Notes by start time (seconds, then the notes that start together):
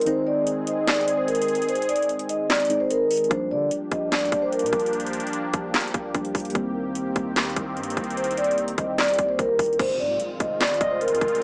Already playing: D#3 G#3 C4
0.01 D#3, closed hi-hat
0.06 G#3 C4 D#4 G#4 C5, closed hi-hat
0.27 D5
0.47 closed hi-hat
0.67 D#5, closed hi-hat
0.87 D5, snare, clap, closed hi-hat
0.94 closed hi-hat
1.01 closed hi-hat
1.08 closed hi-hat
1.17 C5
1.28 A#4, closed hi-hat
1.35 closed hi-hat
1.42 closed hi-hat
1.48 closed hi-hat
1.55 closed hi-hat
1.62 closed hi-hat
1.69 C5, closed hi-hat
1.75 closed hi-hat
1.82 closed hi-hat
1.89 D5, closed hi-hat
1.96 closed hi-hat
2.02 closed hi-hat
2.09 closed hi-hat
2.19 closed hi-hat
2.29 D#5, closed hi-hat
2.50 D5, snare, clap, closed hi-hat
2.55 closed hi-hat
2.60 closed hi-hat
2.65 closed hi-hat
2.69 D#3 G#3 C4 D#4, closed hi-hat
2.80 C5
2.90 A#4, closed hi-hat
3.11 closed hi-hat, open hi-hat
3.17 closed hi-hat
3.24 closed hi-hat
3.29 A#1 F3 G3 A#3 D4 G4 C5, kick, closed hi-hat
3.51 D3 D5
3.71 closed hi-hat
3.91 A#1 D#5, kick, closed hi-hat
4.12 D5, snare, clap, closed hi-hat
4.19 D2, closed hi-hat
4.25 closed hi-hat
4.32 A#1, kick, closed hi-hat
4.42 C5
4.52 A#4, closed hi-hat
4.59 A#2, closed hi-hat
4.66 closed hi-hat
4.73 A#1, kick, closed hi-hat
4.80 closed hi-hat
4.86 closed hi-hat
4.93 closed hi-hat
5.00 closed hi-hat
5.06 closed hi-hat
5.13 closed hi-hat
5.20 closed hi-hat
5.27 closed hi-hat
5.33 closed hi-hat
5.54 A#1, kick, closed hi-hat
5.74 snare, clap, closed hi-hat
5.81 closed hi-hat
5.87 closed hi-hat
5.94 A#1, kick, closed hi-hat
6.14 A#1 F3 G3 A#3 D4, kick, closed hi-hat
6.25 closed hi-hat
6.35 A#1, kick, closed hi-hat, open hi-hat
6.40 closed hi-hat
6.45 closed hi-hat
6.50 D#3 G3, closed hi-hat
6.54 C2 D#3 A#3 C4, kick, closed hi-hat
6.95 closed hi-hat
7.16 C2, kick, closed hi-hat
7.36 D#2, snare, clap, closed hi-hat
7.43 closed hi-hat
7.50 closed hi-hat
7.56 C2, kick, closed hi-hat
7.77 G2, closed hi-hat
7.83 closed hi-hat
7.90 closed hi-hat
7.97 C2, kick, closed hi-hat
8.04 closed hi-hat
8.10 closed hi-hat
8.17 C5, closed hi-hat
8.24 closed hi-hat
8.31 closed hi-hat
8.37 D5, closed hi-hat
8.44 closed hi-hat
8.51 closed hi-hat
8.58 closed hi-hat
8.68 closed hi-hat
8.78 C2 D#5, kick, closed hi-hat
8.98 D5, snare, clap, closed hi-hat
9.03 closed hi-hat
9.08 closed hi-hat
9.14 closed hi-hat
9.19 C2, kick, closed hi-hat
9.29 C5
9.39 C2 A#4, kick, closed hi-hat
9.59 C2, kick, closed hi-hat, open hi-hat
9.66 closed hi-hat
9.73 closed hi-hat
9.79 F1 D#3 G#3 C4 F4 C5, kick, closed hi-hat, crash, impact
9.99 G#2 D5
10.20 closed hi-hat
10.40 F1 D#5, kick, closed hi-hat
10.60 D5, snare, clap, closed hi-hat
10.67 G#1, closed hi-hat
10.74 closed hi-hat
10.81 F1 D#5, kick, closed hi-hat
10.91 C5
11.01 A#4, closed hi-hat
11.08 F2, closed hi-hat
11.15 closed hi-hat
11.21 F1, kick, closed hi-hat
11.28 closed hi-hat
11.35 closed hi-hat